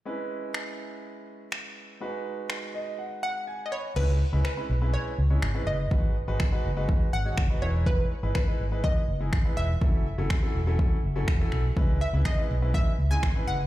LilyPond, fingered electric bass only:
\new Staff \with { instrumentName = "Fingered electric bass" } { \clef bass \time 4/4 \key cis \minor \tempo 4 = 123 r1 | r1 | cis,8. cis,16 r8 b,,8. r16 cis,8 gis,,8 fis,,8 | gis,,8. gis,,16 r8 fis,,8. r16 gis,,8 fis,,8 e,,8~ |
e,,8. gis,,16 r8 gis,,8. r16 fis,,8 gis,,8 e,,8 | fis,,8. fis,,16 r8 e,,8. r16 fis,,8 e,,8 b,,8 | cis,8. cis,16 r8 b,,8. r16 cis,8 gis,,8 fis,,8 | }